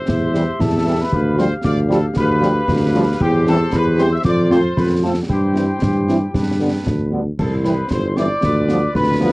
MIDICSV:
0, 0, Header, 1, 8, 480
1, 0, Start_track
1, 0, Key_signature, 0, "major"
1, 0, Tempo, 521648
1, 75, Time_signature, 2, 2, 24, 8
1, 8578, End_track
2, 0, Start_track
2, 0, Title_t, "Piccolo"
2, 0, Program_c, 0, 72
2, 0, Note_on_c, 0, 84, 70
2, 557, Note_on_c, 0, 81, 76
2, 570, Note_off_c, 0, 84, 0
2, 931, Note_on_c, 0, 83, 61
2, 945, Note_off_c, 0, 81, 0
2, 1265, Note_off_c, 0, 83, 0
2, 1271, Note_on_c, 0, 84, 70
2, 1326, Note_off_c, 0, 84, 0
2, 1513, Note_on_c, 0, 86, 78
2, 1568, Note_off_c, 0, 86, 0
2, 1762, Note_on_c, 0, 81, 67
2, 1817, Note_off_c, 0, 81, 0
2, 1995, Note_on_c, 0, 83, 79
2, 2919, Note_off_c, 0, 83, 0
2, 2950, Note_on_c, 0, 79, 87
2, 3176, Note_off_c, 0, 79, 0
2, 3197, Note_on_c, 0, 81, 82
2, 3426, Note_on_c, 0, 83, 86
2, 3440, Note_off_c, 0, 81, 0
2, 3665, Note_off_c, 0, 83, 0
2, 3671, Note_on_c, 0, 84, 78
2, 3785, Note_off_c, 0, 84, 0
2, 3792, Note_on_c, 0, 88, 83
2, 3902, Note_off_c, 0, 88, 0
2, 3907, Note_on_c, 0, 86, 84
2, 4134, Note_off_c, 0, 86, 0
2, 4148, Note_on_c, 0, 84, 77
2, 4375, Note_off_c, 0, 84, 0
2, 4383, Note_on_c, 0, 83, 76
2, 4439, Note_off_c, 0, 83, 0
2, 4632, Note_on_c, 0, 81, 69
2, 4687, Note_off_c, 0, 81, 0
2, 4876, Note_on_c, 0, 79, 69
2, 6280, Note_off_c, 0, 79, 0
2, 6800, Note_on_c, 0, 81, 63
2, 6855, Note_off_c, 0, 81, 0
2, 7038, Note_on_c, 0, 83, 56
2, 7274, Note_on_c, 0, 84, 65
2, 7288, Note_off_c, 0, 83, 0
2, 7514, Note_on_c, 0, 86, 70
2, 7527, Note_off_c, 0, 84, 0
2, 8230, Note_off_c, 0, 86, 0
2, 8236, Note_on_c, 0, 83, 77
2, 8571, Note_off_c, 0, 83, 0
2, 8578, End_track
3, 0, Start_track
3, 0, Title_t, "Trumpet section"
3, 0, Program_c, 1, 61
3, 0, Note_on_c, 1, 72, 77
3, 521, Note_off_c, 1, 72, 0
3, 572, Note_on_c, 1, 69, 84
3, 919, Note_on_c, 1, 71, 79
3, 923, Note_off_c, 1, 69, 0
3, 1277, Note_off_c, 1, 71, 0
3, 1279, Note_on_c, 1, 72, 90
3, 1386, Note_off_c, 1, 72, 0
3, 1524, Note_on_c, 1, 74, 97
3, 1630, Note_off_c, 1, 74, 0
3, 1767, Note_on_c, 1, 69, 76
3, 1873, Note_off_c, 1, 69, 0
3, 2004, Note_on_c, 1, 71, 94
3, 2923, Note_off_c, 1, 71, 0
3, 2952, Note_on_c, 1, 67, 93
3, 3177, Note_off_c, 1, 67, 0
3, 3204, Note_on_c, 1, 69, 97
3, 3423, Note_off_c, 1, 69, 0
3, 3450, Note_on_c, 1, 71, 104
3, 3683, Note_off_c, 1, 71, 0
3, 3686, Note_on_c, 1, 72, 95
3, 3801, Note_off_c, 1, 72, 0
3, 3809, Note_on_c, 1, 76, 96
3, 3860, Note_off_c, 1, 76, 0
3, 3920, Note_on_c, 1, 74, 97
3, 4141, Note_off_c, 1, 74, 0
3, 4161, Note_on_c, 1, 72, 95
3, 4398, Note_off_c, 1, 72, 0
3, 4405, Note_on_c, 1, 71, 84
3, 4511, Note_off_c, 1, 71, 0
3, 4646, Note_on_c, 1, 69, 71
3, 4752, Note_off_c, 1, 69, 0
3, 4866, Note_on_c, 1, 67, 72
3, 6275, Note_off_c, 1, 67, 0
3, 6799, Note_on_c, 1, 69, 74
3, 6906, Note_off_c, 1, 69, 0
3, 7048, Note_on_c, 1, 71, 60
3, 7266, Note_off_c, 1, 71, 0
3, 7284, Note_on_c, 1, 72, 78
3, 7391, Note_off_c, 1, 72, 0
3, 7521, Note_on_c, 1, 74, 87
3, 8202, Note_off_c, 1, 74, 0
3, 8234, Note_on_c, 1, 71, 91
3, 8570, Note_off_c, 1, 71, 0
3, 8578, End_track
4, 0, Start_track
4, 0, Title_t, "Woodwind section"
4, 0, Program_c, 2, 71
4, 76, Note_on_c, 2, 67, 57
4, 81, Note_on_c, 2, 76, 54
4, 999, Note_off_c, 2, 67, 0
4, 1001, Note_off_c, 2, 76, 0
4, 1033, Note_on_c, 2, 67, 55
4, 1035, Note_on_c, 2, 77, 63
4, 1480, Note_off_c, 2, 67, 0
4, 1510, Note_off_c, 2, 77, 0
4, 1511, Note_on_c, 2, 67, 62
4, 1521, Note_on_c, 2, 77, 66
4, 1960, Note_off_c, 2, 67, 0
4, 1965, Note_off_c, 2, 77, 0
4, 1993, Note_on_c, 2, 67, 72
4, 1999, Note_on_c, 2, 77, 77
4, 2917, Note_off_c, 2, 67, 0
4, 2920, Note_off_c, 2, 77, 0
4, 2949, Note_on_c, 2, 72, 77
4, 2950, Note_on_c, 2, 67, 72
4, 3876, Note_off_c, 2, 67, 0
4, 3900, Note_off_c, 2, 72, 0
4, 3911, Note_on_c, 2, 65, 75
4, 3912, Note_on_c, 2, 72, 71
4, 4709, Note_off_c, 2, 65, 0
4, 4709, Note_off_c, 2, 72, 0
4, 4866, Note_on_c, 2, 64, 55
4, 4872, Note_on_c, 2, 72, 60
4, 5794, Note_off_c, 2, 64, 0
4, 5797, Note_off_c, 2, 72, 0
4, 5843, Note_on_c, 2, 62, 51
4, 5843, Note_on_c, 2, 71, 51
4, 6560, Note_off_c, 2, 62, 0
4, 6560, Note_off_c, 2, 71, 0
4, 6802, Note_on_c, 2, 64, 54
4, 6805, Note_on_c, 2, 72, 55
4, 7246, Note_off_c, 2, 64, 0
4, 7247, Note_off_c, 2, 72, 0
4, 7280, Note_on_c, 2, 64, 57
4, 7280, Note_on_c, 2, 72, 56
4, 7725, Note_off_c, 2, 64, 0
4, 7725, Note_off_c, 2, 72, 0
4, 7770, Note_on_c, 2, 65, 57
4, 7770, Note_on_c, 2, 71, 57
4, 8210, Note_off_c, 2, 65, 0
4, 8210, Note_off_c, 2, 71, 0
4, 8229, Note_on_c, 2, 65, 64
4, 8234, Note_on_c, 2, 71, 65
4, 8578, Note_off_c, 2, 65, 0
4, 8578, Note_off_c, 2, 71, 0
4, 8578, End_track
5, 0, Start_track
5, 0, Title_t, "French horn section"
5, 0, Program_c, 3, 60
5, 297, Note_on_c, 3, 64, 51
5, 298, Note_on_c, 3, 67, 53
5, 299, Note_on_c, 3, 55, 45
5, 387, Note_off_c, 3, 64, 0
5, 388, Note_off_c, 3, 67, 0
5, 389, Note_off_c, 3, 55, 0
5, 778, Note_on_c, 3, 55, 55
5, 779, Note_on_c, 3, 64, 50
5, 786, Note_on_c, 3, 67, 51
5, 868, Note_off_c, 3, 55, 0
5, 869, Note_off_c, 3, 64, 0
5, 874, Note_off_c, 3, 67, 0
5, 1259, Note_on_c, 3, 65, 54
5, 1260, Note_on_c, 3, 55, 55
5, 1264, Note_on_c, 3, 67, 51
5, 1349, Note_off_c, 3, 55, 0
5, 1349, Note_off_c, 3, 65, 0
5, 1353, Note_off_c, 3, 67, 0
5, 1736, Note_on_c, 3, 55, 64
5, 1736, Note_on_c, 3, 65, 61
5, 1737, Note_on_c, 3, 67, 60
5, 1827, Note_off_c, 3, 55, 0
5, 1827, Note_off_c, 3, 65, 0
5, 1827, Note_off_c, 3, 67, 0
5, 2214, Note_on_c, 3, 55, 60
5, 2216, Note_on_c, 3, 65, 64
5, 2217, Note_on_c, 3, 67, 65
5, 2305, Note_off_c, 3, 55, 0
5, 2307, Note_off_c, 3, 65, 0
5, 2307, Note_off_c, 3, 67, 0
5, 2707, Note_on_c, 3, 65, 60
5, 2708, Note_on_c, 3, 67, 64
5, 2710, Note_on_c, 3, 55, 65
5, 2795, Note_off_c, 3, 65, 0
5, 2796, Note_off_c, 3, 67, 0
5, 2797, Note_off_c, 3, 55, 0
5, 3183, Note_on_c, 3, 60, 59
5, 3183, Note_on_c, 3, 67, 69
5, 3189, Note_on_c, 3, 55, 65
5, 3272, Note_off_c, 3, 60, 0
5, 3273, Note_off_c, 3, 67, 0
5, 3277, Note_off_c, 3, 55, 0
5, 3661, Note_on_c, 3, 67, 61
5, 3664, Note_on_c, 3, 55, 65
5, 3667, Note_on_c, 3, 60, 65
5, 3750, Note_off_c, 3, 67, 0
5, 3753, Note_off_c, 3, 55, 0
5, 3755, Note_off_c, 3, 60, 0
5, 4144, Note_on_c, 3, 60, 56
5, 4145, Note_on_c, 3, 65, 59
5, 4146, Note_on_c, 3, 57, 59
5, 4233, Note_off_c, 3, 60, 0
5, 4234, Note_off_c, 3, 65, 0
5, 4235, Note_off_c, 3, 57, 0
5, 4621, Note_on_c, 3, 57, 54
5, 4625, Note_on_c, 3, 60, 50
5, 4625, Note_on_c, 3, 65, 58
5, 4711, Note_off_c, 3, 57, 0
5, 4714, Note_off_c, 3, 60, 0
5, 4714, Note_off_c, 3, 65, 0
5, 5102, Note_on_c, 3, 55, 47
5, 5106, Note_on_c, 3, 64, 48
5, 5107, Note_on_c, 3, 60, 48
5, 5191, Note_off_c, 3, 55, 0
5, 5195, Note_off_c, 3, 64, 0
5, 5196, Note_off_c, 3, 60, 0
5, 5597, Note_on_c, 3, 60, 50
5, 5599, Note_on_c, 3, 64, 47
5, 5603, Note_on_c, 3, 55, 45
5, 5683, Note_off_c, 3, 60, 0
5, 5685, Note_off_c, 3, 64, 0
5, 5688, Note_off_c, 3, 55, 0
5, 6074, Note_on_c, 3, 59, 43
5, 6077, Note_on_c, 3, 62, 44
5, 6081, Note_on_c, 3, 55, 43
5, 6161, Note_off_c, 3, 59, 0
5, 6163, Note_off_c, 3, 62, 0
5, 6166, Note_off_c, 3, 55, 0
5, 6547, Note_on_c, 3, 59, 43
5, 6547, Note_on_c, 3, 62, 44
5, 6552, Note_on_c, 3, 55, 45
5, 6635, Note_off_c, 3, 59, 0
5, 6635, Note_off_c, 3, 62, 0
5, 6639, Note_off_c, 3, 55, 0
5, 7035, Note_on_c, 3, 60, 45
5, 7036, Note_on_c, 3, 55, 48
5, 7038, Note_on_c, 3, 64, 45
5, 7121, Note_off_c, 3, 60, 0
5, 7122, Note_off_c, 3, 55, 0
5, 7124, Note_off_c, 3, 64, 0
5, 7516, Note_on_c, 3, 60, 51
5, 7517, Note_on_c, 3, 55, 54
5, 7520, Note_on_c, 3, 64, 54
5, 7602, Note_off_c, 3, 60, 0
5, 7603, Note_off_c, 3, 55, 0
5, 7606, Note_off_c, 3, 64, 0
5, 8000, Note_on_c, 3, 65, 55
5, 8001, Note_on_c, 3, 59, 51
5, 8002, Note_on_c, 3, 55, 48
5, 8086, Note_off_c, 3, 65, 0
5, 8087, Note_off_c, 3, 55, 0
5, 8087, Note_off_c, 3, 59, 0
5, 8463, Note_on_c, 3, 59, 58
5, 8470, Note_on_c, 3, 55, 62
5, 8470, Note_on_c, 3, 65, 53
5, 8553, Note_off_c, 3, 59, 0
5, 8558, Note_off_c, 3, 55, 0
5, 8558, Note_off_c, 3, 65, 0
5, 8578, End_track
6, 0, Start_track
6, 0, Title_t, "Trombone section"
6, 0, Program_c, 4, 61
6, 308, Note_on_c, 4, 55, 61
6, 313, Note_on_c, 4, 52, 58
6, 394, Note_off_c, 4, 55, 0
6, 398, Note_off_c, 4, 52, 0
6, 797, Note_on_c, 4, 55, 59
6, 799, Note_on_c, 4, 52, 65
6, 880, Note_off_c, 4, 55, 0
6, 881, Note_off_c, 4, 52, 0
6, 1264, Note_on_c, 4, 55, 69
6, 1265, Note_on_c, 4, 53, 66
6, 1351, Note_off_c, 4, 55, 0
6, 1352, Note_off_c, 4, 53, 0
6, 1727, Note_on_c, 4, 53, 71
6, 1728, Note_on_c, 4, 55, 70
6, 1820, Note_off_c, 4, 53, 0
6, 1821, Note_off_c, 4, 55, 0
6, 2222, Note_on_c, 4, 53, 74
6, 2226, Note_on_c, 4, 55, 70
6, 2310, Note_off_c, 4, 53, 0
6, 2313, Note_off_c, 4, 55, 0
6, 2712, Note_on_c, 4, 55, 76
6, 2723, Note_on_c, 4, 53, 78
6, 2797, Note_off_c, 4, 55, 0
6, 2804, Note_off_c, 4, 53, 0
6, 3203, Note_on_c, 4, 60, 83
6, 3205, Note_on_c, 4, 52, 81
6, 3284, Note_off_c, 4, 60, 0
6, 3285, Note_off_c, 4, 52, 0
6, 3658, Note_on_c, 4, 52, 73
6, 3663, Note_on_c, 4, 60, 76
6, 3748, Note_off_c, 4, 52, 0
6, 3751, Note_off_c, 4, 60, 0
6, 4140, Note_on_c, 4, 60, 71
6, 4149, Note_on_c, 4, 53, 74
6, 4229, Note_off_c, 4, 60, 0
6, 4235, Note_off_c, 4, 53, 0
6, 4640, Note_on_c, 4, 53, 64
6, 4642, Note_on_c, 4, 60, 65
6, 4722, Note_off_c, 4, 53, 0
6, 4724, Note_off_c, 4, 60, 0
6, 5112, Note_on_c, 4, 60, 56
6, 5121, Note_on_c, 4, 52, 52
6, 5197, Note_off_c, 4, 60, 0
6, 5203, Note_off_c, 4, 52, 0
6, 5596, Note_on_c, 4, 60, 57
6, 5600, Note_on_c, 4, 52, 52
6, 5680, Note_off_c, 4, 60, 0
6, 5682, Note_off_c, 4, 52, 0
6, 6064, Note_on_c, 4, 59, 53
6, 6068, Note_on_c, 4, 50, 53
6, 6152, Note_off_c, 4, 59, 0
6, 6154, Note_off_c, 4, 50, 0
6, 6541, Note_on_c, 4, 59, 52
6, 6546, Note_on_c, 4, 50, 57
6, 6630, Note_off_c, 4, 59, 0
6, 6633, Note_off_c, 4, 50, 0
6, 7027, Note_on_c, 4, 60, 54
6, 7038, Note_on_c, 4, 52, 52
6, 7114, Note_off_c, 4, 60, 0
6, 7121, Note_off_c, 4, 52, 0
6, 7528, Note_on_c, 4, 60, 58
6, 7529, Note_on_c, 4, 52, 57
6, 7607, Note_off_c, 4, 60, 0
6, 7609, Note_off_c, 4, 52, 0
6, 8005, Note_on_c, 4, 59, 63
6, 8013, Note_on_c, 4, 53, 64
6, 8086, Note_off_c, 4, 59, 0
6, 8091, Note_off_c, 4, 53, 0
6, 8473, Note_on_c, 4, 53, 67
6, 8475, Note_on_c, 4, 59, 72
6, 8558, Note_off_c, 4, 53, 0
6, 8560, Note_off_c, 4, 59, 0
6, 8578, End_track
7, 0, Start_track
7, 0, Title_t, "Tuba"
7, 0, Program_c, 5, 58
7, 71, Note_on_c, 5, 40, 65
7, 473, Note_off_c, 5, 40, 0
7, 547, Note_on_c, 5, 40, 68
7, 951, Note_off_c, 5, 40, 0
7, 1032, Note_on_c, 5, 38, 69
7, 1393, Note_off_c, 5, 38, 0
7, 1513, Note_on_c, 5, 38, 70
7, 1914, Note_off_c, 5, 38, 0
7, 1992, Note_on_c, 5, 38, 76
7, 2393, Note_off_c, 5, 38, 0
7, 2477, Note_on_c, 5, 38, 77
7, 2876, Note_off_c, 5, 38, 0
7, 2951, Note_on_c, 5, 40, 92
7, 3353, Note_off_c, 5, 40, 0
7, 3429, Note_on_c, 5, 40, 82
7, 3832, Note_off_c, 5, 40, 0
7, 3909, Note_on_c, 5, 41, 77
7, 4312, Note_off_c, 5, 41, 0
7, 4391, Note_on_c, 5, 41, 71
7, 4793, Note_off_c, 5, 41, 0
7, 4871, Note_on_c, 5, 43, 66
7, 5273, Note_off_c, 5, 43, 0
7, 5349, Note_on_c, 5, 43, 64
7, 5752, Note_off_c, 5, 43, 0
7, 5831, Note_on_c, 5, 43, 56
7, 6233, Note_off_c, 5, 43, 0
7, 6313, Note_on_c, 5, 38, 61
7, 6714, Note_off_c, 5, 38, 0
7, 6795, Note_on_c, 5, 36, 63
7, 7196, Note_off_c, 5, 36, 0
7, 7273, Note_on_c, 5, 31, 61
7, 7638, Note_off_c, 5, 31, 0
7, 7759, Note_on_c, 5, 38, 70
7, 8158, Note_off_c, 5, 38, 0
7, 8240, Note_on_c, 5, 38, 70
7, 8578, Note_off_c, 5, 38, 0
7, 8578, End_track
8, 0, Start_track
8, 0, Title_t, "Drums"
8, 76, Note_on_c, 9, 35, 74
8, 76, Note_on_c, 9, 38, 61
8, 168, Note_off_c, 9, 35, 0
8, 168, Note_off_c, 9, 38, 0
8, 317, Note_on_c, 9, 38, 51
8, 409, Note_off_c, 9, 38, 0
8, 553, Note_on_c, 9, 35, 73
8, 553, Note_on_c, 9, 38, 59
8, 645, Note_off_c, 9, 35, 0
8, 645, Note_off_c, 9, 38, 0
8, 1034, Note_on_c, 9, 35, 77
8, 1126, Note_off_c, 9, 35, 0
8, 1275, Note_on_c, 9, 38, 50
8, 1367, Note_off_c, 9, 38, 0
8, 1512, Note_on_c, 9, 35, 79
8, 1512, Note_on_c, 9, 38, 77
8, 1604, Note_off_c, 9, 35, 0
8, 1604, Note_off_c, 9, 38, 0
8, 1754, Note_on_c, 9, 38, 47
8, 1846, Note_off_c, 9, 38, 0
8, 1987, Note_on_c, 9, 35, 82
8, 1987, Note_on_c, 9, 38, 69
8, 2079, Note_off_c, 9, 35, 0
8, 2079, Note_off_c, 9, 38, 0
8, 2233, Note_on_c, 9, 38, 53
8, 2325, Note_off_c, 9, 38, 0
8, 2467, Note_on_c, 9, 35, 75
8, 2467, Note_on_c, 9, 38, 63
8, 2559, Note_off_c, 9, 35, 0
8, 2559, Note_off_c, 9, 38, 0
8, 2948, Note_on_c, 9, 35, 80
8, 2948, Note_on_c, 9, 49, 29
8, 3040, Note_off_c, 9, 35, 0
8, 3040, Note_off_c, 9, 49, 0
8, 3190, Note_on_c, 9, 38, 52
8, 3282, Note_off_c, 9, 38, 0
8, 3429, Note_on_c, 9, 35, 75
8, 3429, Note_on_c, 9, 38, 74
8, 3521, Note_off_c, 9, 35, 0
8, 3521, Note_off_c, 9, 38, 0
8, 3666, Note_on_c, 9, 38, 50
8, 3758, Note_off_c, 9, 38, 0
8, 3908, Note_on_c, 9, 35, 75
8, 3908, Note_on_c, 9, 38, 67
8, 4000, Note_off_c, 9, 35, 0
8, 4000, Note_off_c, 9, 38, 0
8, 4154, Note_on_c, 9, 38, 56
8, 4246, Note_off_c, 9, 38, 0
8, 4392, Note_on_c, 9, 35, 76
8, 4392, Note_on_c, 9, 38, 60
8, 4484, Note_off_c, 9, 35, 0
8, 4484, Note_off_c, 9, 38, 0
8, 4875, Note_on_c, 9, 35, 75
8, 4967, Note_off_c, 9, 35, 0
8, 5115, Note_on_c, 9, 38, 52
8, 5207, Note_off_c, 9, 38, 0
8, 5356, Note_on_c, 9, 35, 72
8, 5356, Note_on_c, 9, 38, 74
8, 5448, Note_off_c, 9, 35, 0
8, 5448, Note_off_c, 9, 38, 0
8, 5599, Note_on_c, 9, 38, 45
8, 5691, Note_off_c, 9, 38, 0
8, 5838, Note_on_c, 9, 35, 74
8, 5838, Note_on_c, 9, 38, 60
8, 5930, Note_off_c, 9, 35, 0
8, 5930, Note_off_c, 9, 38, 0
8, 6318, Note_on_c, 9, 35, 68
8, 6318, Note_on_c, 9, 38, 71
8, 6410, Note_off_c, 9, 35, 0
8, 6410, Note_off_c, 9, 38, 0
8, 6802, Note_on_c, 9, 35, 79
8, 6802, Note_on_c, 9, 49, 43
8, 6894, Note_off_c, 9, 35, 0
8, 6894, Note_off_c, 9, 49, 0
8, 7036, Note_on_c, 9, 38, 50
8, 7128, Note_off_c, 9, 38, 0
8, 7276, Note_on_c, 9, 35, 65
8, 7276, Note_on_c, 9, 38, 67
8, 7368, Note_off_c, 9, 35, 0
8, 7368, Note_off_c, 9, 38, 0
8, 7516, Note_on_c, 9, 38, 45
8, 7608, Note_off_c, 9, 38, 0
8, 7758, Note_on_c, 9, 35, 72
8, 7758, Note_on_c, 9, 38, 65
8, 7850, Note_off_c, 9, 35, 0
8, 7850, Note_off_c, 9, 38, 0
8, 7994, Note_on_c, 9, 38, 53
8, 8086, Note_off_c, 9, 38, 0
8, 8237, Note_on_c, 9, 35, 75
8, 8237, Note_on_c, 9, 38, 61
8, 8329, Note_off_c, 9, 35, 0
8, 8329, Note_off_c, 9, 38, 0
8, 8578, End_track
0, 0, End_of_file